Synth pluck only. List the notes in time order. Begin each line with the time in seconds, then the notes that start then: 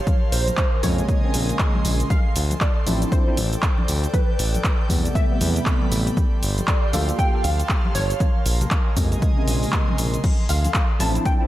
Already playing: C#5
0.32 C5
0.58 C5
0.83 C#5
2.10 F5
2.61 D5
3.12 C5
4.13 B4
5.15 E5
6.68 D5
6.94 F5
7.19 G5
7.44 F5
7.95 C#5
10.49 F5
11.00 A5
11.25 G5